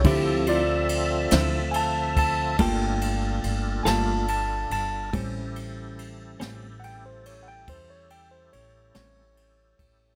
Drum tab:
RD |xxxxxxxxxxxx|xxxxxxxxxxxx|
SD |---o-----o--|---o-----o--|
BD |o----oo-----|o-----o----o|